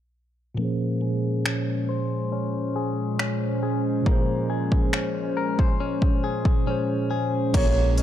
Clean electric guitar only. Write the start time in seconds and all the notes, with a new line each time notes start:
0.59 A#3
1.02 G#4
1.46 C#4
1.89 C5
2.32 C#4
2.76 G#4
3.19 C#4
3.63 G#4
4.06 A#3
4.50 G#4
4.93 C#4
5.37 A#4
5.59 C5
5.80 C#4
6.24 G#4
6.67 C#4
7.11 G#4
7.54 A#3
7.98 C#4